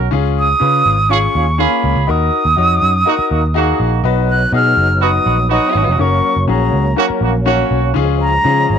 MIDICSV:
0, 0, Header, 1, 7, 480
1, 0, Start_track
1, 0, Key_signature, 6, "major"
1, 0, Tempo, 490196
1, 118, Time_signature, 4, 2, 24, 8
1, 8604, End_track
2, 0, Start_track
2, 0, Title_t, "Flute"
2, 0, Program_c, 0, 73
2, 386, Note_on_c, 0, 87, 120
2, 1086, Note_on_c, 0, 85, 100
2, 1101, Note_off_c, 0, 87, 0
2, 1571, Note_on_c, 0, 83, 85
2, 1586, Note_off_c, 0, 85, 0
2, 2063, Note_on_c, 0, 87, 104
2, 2078, Note_off_c, 0, 83, 0
2, 3730, Note_off_c, 0, 87, 0
2, 4211, Note_on_c, 0, 90, 101
2, 4428, Note_off_c, 0, 90, 0
2, 4459, Note_on_c, 0, 89, 102
2, 4923, Note_on_c, 0, 87, 107
2, 4938, Note_off_c, 0, 89, 0
2, 5400, Note_off_c, 0, 87, 0
2, 5407, Note_on_c, 0, 87, 95
2, 5884, Note_on_c, 0, 85, 92
2, 5898, Note_off_c, 0, 87, 0
2, 6348, Note_off_c, 0, 85, 0
2, 6354, Note_on_c, 0, 82, 87
2, 7036, Note_off_c, 0, 82, 0
2, 8043, Note_on_c, 0, 82, 119
2, 8604, Note_off_c, 0, 82, 0
2, 8604, End_track
3, 0, Start_track
3, 0, Title_t, "Grand piano"
3, 0, Program_c, 1, 0
3, 107, Note_on_c, 1, 61, 84
3, 118, Note_on_c, 1, 65, 75
3, 127, Note_on_c, 1, 68, 89
3, 443, Note_off_c, 1, 61, 0
3, 449, Note_off_c, 1, 65, 0
3, 453, Note_off_c, 1, 68, 0
3, 584, Note_on_c, 1, 61, 73
3, 594, Note_on_c, 1, 65, 68
3, 603, Note_on_c, 1, 71, 76
3, 922, Note_off_c, 1, 61, 0
3, 927, Note_off_c, 1, 65, 0
3, 932, Note_off_c, 1, 71, 0
3, 1069, Note_on_c, 1, 61, 69
3, 1079, Note_on_c, 1, 65, 62
3, 1086, Note_on_c, 1, 68, 78
3, 1405, Note_off_c, 1, 61, 0
3, 1410, Note_off_c, 1, 65, 0
3, 1413, Note_off_c, 1, 68, 0
3, 1550, Note_on_c, 1, 61, 70
3, 1557, Note_on_c, 1, 65, 65
3, 1568, Note_on_c, 1, 58, 79
3, 1885, Note_off_c, 1, 61, 0
3, 1889, Note_off_c, 1, 65, 0
3, 1894, Note_off_c, 1, 58, 0
3, 2027, Note_on_c, 1, 63, 72
3, 2034, Note_on_c, 1, 66, 65
3, 2045, Note_on_c, 1, 70, 78
3, 2364, Note_off_c, 1, 63, 0
3, 2367, Note_off_c, 1, 66, 0
3, 2373, Note_off_c, 1, 70, 0
3, 2507, Note_on_c, 1, 63, 68
3, 2515, Note_on_c, 1, 66, 63
3, 2529, Note_on_c, 1, 73, 75
3, 2844, Note_off_c, 1, 63, 0
3, 2848, Note_off_c, 1, 66, 0
3, 2855, Note_off_c, 1, 73, 0
3, 2987, Note_on_c, 1, 63, 77
3, 2996, Note_on_c, 1, 66, 75
3, 3006, Note_on_c, 1, 70, 86
3, 3324, Note_off_c, 1, 63, 0
3, 3328, Note_off_c, 1, 66, 0
3, 3333, Note_off_c, 1, 70, 0
3, 3468, Note_on_c, 1, 63, 80
3, 3477, Note_on_c, 1, 66, 79
3, 3486, Note_on_c, 1, 68, 92
3, 3804, Note_off_c, 1, 63, 0
3, 3809, Note_off_c, 1, 66, 0
3, 3813, Note_off_c, 1, 68, 0
3, 3952, Note_on_c, 1, 63, 83
3, 3961, Note_on_c, 1, 66, 77
3, 3969, Note_on_c, 1, 71, 91
3, 4286, Note_off_c, 1, 63, 0
3, 4290, Note_off_c, 1, 66, 0
3, 4294, Note_off_c, 1, 71, 0
3, 4431, Note_on_c, 1, 63, 70
3, 4440, Note_on_c, 1, 66, 62
3, 4449, Note_on_c, 1, 68, 78
3, 4766, Note_off_c, 1, 63, 0
3, 4770, Note_off_c, 1, 66, 0
3, 4774, Note_off_c, 1, 68, 0
3, 4912, Note_on_c, 1, 63, 67
3, 4924, Note_on_c, 1, 66, 61
3, 4929, Note_on_c, 1, 71, 75
3, 5246, Note_off_c, 1, 63, 0
3, 5252, Note_off_c, 1, 66, 0
3, 5254, Note_off_c, 1, 71, 0
3, 5388, Note_on_c, 1, 63, 74
3, 5395, Note_on_c, 1, 66, 66
3, 5406, Note_on_c, 1, 73, 77
3, 5724, Note_off_c, 1, 63, 0
3, 5728, Note_off_c, 1, 66, 0
3, 5733, Note_off_c, 1, 73, 0
3, 5865, Note_on_c, 1, 61, 72
3, 5873, Note_on_c, 1, 66, 63
3, 5886, Note_on_c, 1, 70, 79
3, 6202, Note_off_c, 1, 61, 0
3, 6206, Note_off_c, 1, 66, 0
3, 6213, Note_off_c, 1, 70, 0
3, 6341, Note_on_c, 1, 61, 72
3, 6353, Note_on_c, 1, 66, 65
3, 6359, Note_on_c, 1, 68, 77
3, 6680, Note_off_c, 1, 61, 0
3, 6686, Note_off_c, 1, 66, 0
3, 6689, Note_off_c, 1, 68, 0
3, 6818, Note_on_c, 1, 61, 69
3, 6826, Note_on_c, 1, 66, 64
3, 6836, Note_on_c, 1, 70, 74
3, 7159, Note_off_c, 1, 61, 0
3, 7163, Note_off_c, 1, 66, 0
3, 7167, Note_off_c, 1, 70, 0
3, 7302, Note_on_c, 1, 61, 87
3, 7314, Note_on_c, 1, 66, 77
3, 7321, Note_on_c, 1, 73, 96
3, 7641, Note_off_c, 1, 61, 0
3, 7646, Note_off_c, 1, 66, 0
3, 7650, Note_off_c, 1, 73, 0
3, 7774, Note_on_c, 1, 61, 89
3, 7788, Note_on_c, 1, 65, 79
3, 7795, Note_on_c, 1, 68, 95
3, 8116, Note_off_c, 1, 61, 0
3, 8123, Note_off_c, 1, 65, 0
3, 8127, Note_off_c, 1, 68, 0
3, 8268, Note_on_c, 1, 61, 76
3, 8276, Note_on_c, 1, 65, 62
3, 8285, Note_on_c, 1, 68, 83
3, 8603, Note_off_c, 1, 61, 0
3, 8604, Note_off_c, 1, 65, 0
3, 8604, Note_off_c, 1, 68, 0
3, 8604, End_track
4, 0, Start_track
4, 0, Title_t, "Horn section"
4, 0, Program_c, 2, 61
4, 1077, Note_on_c, 2, 65, 88
4, 1077, Note_on_c, 2, 68, 106
4, 1079, Note_on_c, 2, 61, 86
4, 1153, Note_off_c, 2, 65, 0
4, 1154, Note_off_c, 2, 68, 0
4, 1155, Note_off_c, 2, 61, 0
4, 1321, Note_on_c, 2, 65, 80
4, 1325, Note_on_c, 2, 68, 85
4, 1328, Note_on_c, 2, 61, 77
4, 1422, Note_off_c, 2, 65, 0
4, 1424, Note_off_c, 2, 68, 0
4, 1425, Note_off_c, 2, 61, 0
4, 1555, Note_on_c, 2, 68, 98
4, 1556, Note_on_c, 2, 61, 86
4, 1562, Note_on_c, 2, 65, 85
4, 2013, Note_off_c, 2, 61, 0
4, 2013, Note_off_c, 2, 68, 0
4, 2016, Note_off_c, 2, 65, 0
4, 3002, Note_on_c, 2, 58, 85
4, 3002, Note_on_c, 2, 63, 89
4, 3003, Note_on_c, 2, 66, 102
4, 3077, Note_off_c, 2, 58, 0
4, 3077, Note_off_c, 2, 63, 0
4, 3078, Note_off_c, 2, 66, 0
4, 3243, Note_on_c, 2, 58, 78
4, 3243, Note_on_c, 2, 66, 82
4, 3247, Note_on_c, 2, 63, 78
4, 3343, Note_off_c, 2, 58, 0
4, 3343, Note_off_c, 2, 66, 0
4, 3345, Note_off_c, 2, 63, 0
4, 3488, Note_on_c, 2, 66, 98
4, 3491, Note_on_c, 2, 58, 89
4, 3491, Note_on_c, 2, 63, 83
4, 3939, Note_off_c, 2, 66, 0
4, 3941, Note_off_c, 2, 58, 0
4, 3941, Note_off_c, 2, 63, 0
4, 4910, Note_on_c, 2, 59, 86
4, 4912, Note_on_c, 2, 63, 89
4, 4912, Note_on_c, 2, 66, 104
4, 4989, Note_off_c, 2, 59, 0
4, 4990, Note_off_c, 2, 63, 0
4, 4990, Note_off_c, 2, 66, 0
4, 5140, Note_on_c, 2, 59, 81
4, 5142, Note_on_c, 2, 63, 76
4, 5142, Note_on_c, 2, 66, 88
4, 5250, Note_off_c, 2, 59, 0
4, 5250, Note_off_c, 2, 66, 0
4, 5251, Note_off_c, 2, 63, 0
4, 5378, Note_on_c, 2, 59, 94
4, 5378, Note_on_c, 2, 63, 92
4, 5378, Note_on_c, 2, 66, 100
4, 5843, Note_off_c, 2, 59, 0
4, 5843, Note_off_c, 2, 63, 0
4, 5843, Note_off_c, 2, 66, 0
4, 6832, Note_on_c, 2, 61, 94
4, 6833, Note_on_c, 2, 58, 89
4, 6833, Note_on_c, 2, 66, 107
4, 6910, Note_off_c, 2, 61, 0
4, 6911, Note_off_c, 2, 58, 0
4, 6911, Note_off_c, 2, 66, 0
4, 7061, Note_on_c, 2, 58, 79
4, 7065, Note_on_c, 2, 61, 78
4, 7066, Note_on_c, 2, 66, 92
4, 7170, Note_off_c, 2, 58, 0
4, 7172, Note_off_c, 2, 61, 0
4, 7173, Note_off_c, 2, 66, 0
4, 7301, Note_on_c, 2, 58, 87
4, 7301, Note_on_c, 2, 66, 100
4, 7303, Note_on_c, 2, 61, 88
4, 7764, Note_off_c, 2, 58, 0
4, 7764, Note_off_c, 2, 66, 0
4, 7765, Note_off_c, 2, 61, 0
4, 8604, End_track
5, 0, Start_track
5, 0, Title_t, "Tonewheel organ"
5, 0, Program_c, 3, 16
5, 3967, Note_on_c, 3, 63, 72
5, 3969, Note_on_c, 3, 54, 63
5, 3971, Note_on_c, 3, 59, 55
5, 5863, Note_off_c, 3, 63, 0
5, 5865, Note_off_c, 3, 59, 0
5, 5877, Note_on_c, 3, 58, 58
5, 5879, Note_on_c, 3, 61, 73
5, 7764, Note_off_c, 3, 54, 0
5, 7778, Note_off_c, 3, 58, 0
5, 7791, Note_on_c, 3, 56, 60
5, 7796, Note_on_c, 3, 53, 66
5, 8604, Note_off_c, 3, 53, 0
5, 8604, Note_off_c, 3, 56, 0
5, 8604, Note_off_c, 3, 61, 0
5, 8604, End_track
6, 0, Start_track
6, 0, Title_t, "Picked electric bass"
6, 0, Program_c, 4, 34
6, 121, Note_on_c, 4, 37, 94
6, 519, Note_off_c, 4, 37, 0
6, 602, Note_on_c, 4, 49, 103
6, 800, Note_off_c, 4, 49, 0
6, 839, Note_on_c, 4, 32, 93
6, 1238, Note_off_c, 4, 32, 0
6, 1325, Note_on_c, 4, 39, 90
6, 1621, Note_off_c, 4, 39, 0
6, 1802, Note_on_c, 4, 37, 88
6, 1900, Note_off_c, 4, 37, 0
6, 1923, Note_on_c, 4, 37, 82
6, 2021, Note_off_c, 4, 37, 0
6, 2043, Note_on_c, 4, 39, 98
6, 2241, Note_off_c, 4, 39, 0
6, 2401, Note_on_c, 4, 39, 83
6, 2500, Note_off_c, 4, 39, 0
6, 2524, Note_on_c, 4, 41, 84
6, 2721, Note_off_c, 4, 41, 0
6, 2766, Note_on_c, 4, 42, 83
6, 2962, Note_off_c, 4, 42, 0
6, 3243, Note_on_c, 4, 39, 80
6, 3640, Note_off_c, 4, 39, 0
6, 3719, Note_on_c, 4, 34, 90
6, 3918, Note_off_c, 4, 34, 0
6, 3952, Note_on_c, 4, 35, 96
6, 4354, Note_off_c, 4, 35, 0
6, 4430, Note_on_c, 4, 47, 91
6, 4633, Note_off_c, 4, 47, 0
6, 4671, Note_on_c, 4, 30, 87
6, 5073, Note_off_c, 4, 30, 0
6, 5152, Note_on_c, 4, 34, 77
6, 5454, Note_off_c, 4, 34, 0
6, 5632, Note_on_c, 4, 32, 89
6, 5734, Note_off_c, 4, 32, 0
6, 5753, Note_on_c, 4, 29, 88
6, 5855, Note_off_c, 4, 29, 0
6, 5869, Note_on_c, 4, 30, 102
6, 6072, Note_off_c, 4, 30, 0
6, 6232, Note_on_c, 4, 30, 83
6, 6334, Note_off_c, 4, 30, 0
6, 6346, Note_on_c, 4, 34, 89
6, 6550, Note_off_c, 4, 34, 0
6, 6588, Note_on_c, 4, 37, 86
6, 6792, Note_off_c, 4, 37, 0
6, 7060, Note_on_c, 4, 34, 85
6, 7466, Note_off_c, 4, 34, 0
6, 7548, Note_on_c, 4, 35, 89
6, 7751, Note_off_c, 4, 35, 0
6, 7793, Note_on_c, 4, 37, 109
6, 8194, Note_off_c, 4, 37, 0
6, 8273, Note_on_c, 4, 49, 91
6, 8474, Note_off_c, 4, 49, 0
6, 8517, Note_on_c, 4, 32, 92
6, 8604, Note_off_c, 4, 32, 0
6, 8604, End_track
7, 0, Start_track
7, 0, Title_t, "Muted picked electric bass strokes"
7, 3120, Note_on_c, 9, 29, 43
7, 3218, Note_off_c, 9, 29, 0
7, 6951, Note_on_c, 9, 29, 45
7, 7049, Note_off_c, 9, 29, 0
7, 8604, End_track
0, 0, End_of_file